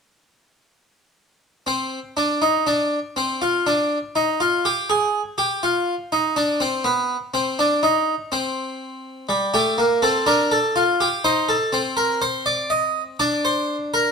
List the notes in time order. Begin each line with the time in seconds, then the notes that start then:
1.67 C4
2.17 D4
2.42 D#4
2.67 D4
3.16 C4
3.42 F4
3.67 D4
4.16 D#4
4.40 F4
4.65 G4
4.90 G#4
5.38 G4
5.63 F4
6.12 D#4
6.36 D4
6.60 C4
6.84 B3
7.34 C4
7.59 D4
7.83 D#4
8.32 C4
9.29 G3
9.54 A3 G4
9.78 A#3
10.02 C4 A4
10.26 D4 A#4
10.52 A4
10.76 F4
11.01 G4
11.24 D#4 C5
11.49 A4
11.73 C4
11.97 A#4
12.22 C5
12.46 D5
12.70 D#5
13.20 D4 D5
13.45 C5
13.94 A#4